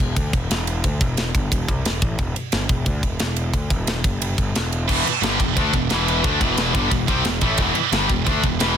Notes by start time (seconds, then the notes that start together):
0.00 E1
0.16 D2, kick, ride
0.33 E1, kick, ride
0.50 E1, snare, ride
0.67 ride
0.84 D2, kick, ride
1.00 E1, kick, ride
1.17 snare, ride
1.35 G1, kick, ride
1.52 E1, kick, ride
1.68 C2, kick, ride
1.85 E1, snare, ride
2.02 A1, kick, ride
2.19 E1, kick, ride
2.36 muted picked electric bass stroke, ride
2.52 G1, snare, ride
2.69 E1, kick, ride
2.86 D2, kick, ride
3.03 E1, kick, ride
3.19 E1, snare, ride
3.36 ride
3.53 D2, kick, ride
3.70 E1, kick, ride
3.87 snare, ride
4.04 F#1, kick, ride
4.22 ride
4.38 G1, kick, ride
4.55 E1, snare, ride
4.72 ride
4.88 E1 E2 B2 E3, kick, crash
5.05 muted picked electric bass stroke, muted distorted electric guitar stroke, ride
5.22 G1 G2 D3 G3, snare, ride
5.40 E1 E2 B2, kick, ride
5.56 D2 D3 A3 D4, kick, ride
5.73 E1 E2 B2, kick, ride
5.90 E1 E2 B2 E3, snare, ride
6.08 ride
6.24 D2 D3 A3 D4, kick, ride
6.40 E1 E2 B2 E3, kick, ride
6.58 snare, ride
6.74 G1 G2 D3 G3, kick, ride
6.91 E1 E2 B2, kick, ride
7.08 C2 C3 G3 C4, kick, ride
7.25 E1 E2 B2, snare, ride
7.41 A1 A2 E3 A3, kick, ride
7.58 E1 E2 B2 E3, kick, ride
7.74 muted picked electric bass stroke, muted distorted electric guitar stroke, ride
7.92 G1 G2 D3 G3, snare, ride
8.09 E1 E2 B2, kick, ride
8.26 D2 D3 A3 D4, kick, ride
8.43 E1 E2 B2, kick, ride
8.60 E1 E2 B2 E3, snare, ride